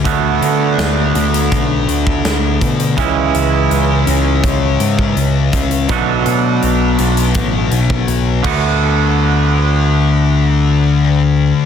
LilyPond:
<<
  \new Staff \with { instrumentName = "Clean electric guitar" } { \time 4/4 \key d \lydian \tempo 4 = 82 <d a b fis'>1 | <cis e gis cis' e'>1 | <b, fis a d' fis'>2.~ <b, fis a d' fis'>8 <d a b fis'>8~ | <d a b fis'>1 | }
  \new Staff \with { instrumentName = "Distorted electric guitar" } { \clef bass \time 4/4 \key d \lydian <d a d'>4. <d a d'>2~ <d a d'>8 | <cis gis cis'>4. <cis gis cis'>2~ <cis gis cis'>8 | <b, fis b>4. <b, fis b>2 <d a d'>8~ | <d a d'>1 | }
  \new Staff \with { instrumentName = "Picked electric bass" } { \clef bass \time 4/4 \key d \lydian d,8 d8 d,8 d,8 b,,8 d,8 d,8 b,8 | cis,8 cis,8 cis,8 cis,8 cis,8 gis,8 cis,8 cis,8 | b,,8 b,8 b,,8 b,,8 a,,8 b,,8 b,,8 d,8~ | d,1 | }
  \new DrumStaff \with { instrumentName = "Drums" } \drummode { \time 4/4 <hh bd>8 hh8 <hh sn>8 hh16 hh16 <hh bd>8 hh16 bd16 <hh sn>8 <hh bd>16 hh16 | <hh bd>8 hh8 hh8 hh8 <hh bd>8 hh16 bd16 hh8 <hh bd>16 hh16 | <hh bd>8 hh8 hh8 hh16 hh16 <hh bd>8 hh16 bd16 hh8 <cymc bd>8 | r4 r4 r4 r4 | }
>>